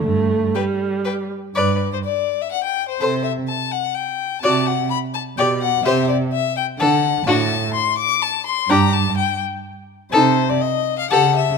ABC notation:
X:1
M:3/4
L:1/16
Q:1/4=126
K:G
V:1 name="Violin"
z4 g4 g4 | B3 c d3 e f g2 c- | c2 e2 a2 f2 g4 | a2 f2 b2 a2 g2 f2 |
e2 d2 e2 g2 f4 | [K:Gm] a4 c'2 d'2 a2 c'2 | b2 a2 g2 z6 | c3 d e3 f ^f2 =e2 |]
V:2 name="Violin"
z4 B4 B4 | d2 z8 z2 | c2 z8 z2 | d2 z6 d2 z2 |
c2 z6 A2 z2 | [K:Gm] ^F2 z8 z2 | G2 z8 z2 | A2 z6 A2 z2 |]
V:3 name="Viola"
A,4 G,6 z2 | B2 z8 z2 | A2 z8 z2 | F2 z6 G2 z2 |
G2 z6 D2 z2 | [K:Gm] D2 z8 z2 | D2 z8 z2 | E2 z6 G2 z2 |]
V:4 name="Cello" clef=bass
G,,4 z8 | G,,4 z8 | C,4 z8 | C,4 z4 B,,4 |
C,4 z4 D,4 | [K:Gm] A,,4 z8 | G,,4 z8 | C,4 z4 ^C,4 |]